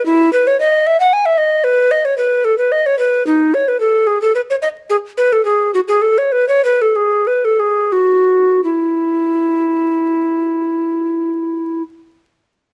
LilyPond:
\new Staff \with { instrumentName = "Recorder" } { \time 3/4 \key e \major \tempo 4 = 105 e'8 b'16 cis''16 dis''8 e''16 fis''16 gis''16 e''16 dis''8 | b'8 dis''16 cis''16 b'8 a'16 b'16 dis''16 cis''16 b'8 | dis'8 cis''16 b'16 a'8 gis'16 a'16 b'16 cis''16 dis''8 | gis'8 b'16 a'16 gis'8 fis'16 gis'16 a'16 cis''16 b'16 cis''16 |
b'16 a'16 gis'8 b'16 a'16 gis'8 fis'4 | e'2.~ | e'2. | }